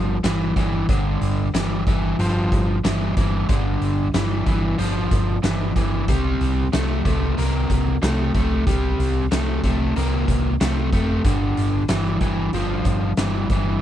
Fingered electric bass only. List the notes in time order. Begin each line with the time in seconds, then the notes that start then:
Already playing: G1
0.23 G1
0.56 G1
0.89 G1
1.21 G1
1.53 G1
1.87 G1
2.18 G1
2.52 G1
2.85 G1
3.17 G1
3.49 G1
3.81 G1
4.14 G1
4.47 G1
4.79 G1
5.12 G1
5.43 G1
5.76 G1
6.08 C2
6.40 C2
6.73 C2
7.05 C2
7.38 C2
7.70 C2
8.02 C2
8.34 C2
8.67 C2
8.98 C2
9.31 C2
9.63 C2
9.96 C2
10.28 C2
10.61 C2
10.93 F1
11.25 G1
11.58 G1
11.89 G1
12.21 G1
12.53 G1
12.85 G1
13.17 G1
13.50 G1